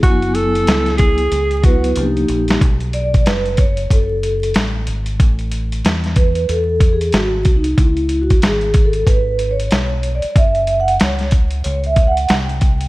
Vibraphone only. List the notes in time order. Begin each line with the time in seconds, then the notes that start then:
0.02 F#3 B3 E4 G#5
1.63 F#3 B3 E4 B4
1.96 F3 A#3 D4 G4
2.03 D#4
2.94 D5
3.26 B4
3.59 C#5
3.92 A4
6.16 B4
6.49 A4
6.93 G#4
7.13 F#4
7.56 D#4
7.80 E4
8.21 F#4
8.44 G#4
8.85 A4
9.07 B4
9.51 C#5
10.15 D5
10.37 E5
10.80 F#5
11.02 C#5
11.64 C#5
11.86 E5
12.07 F#5
12.28 G5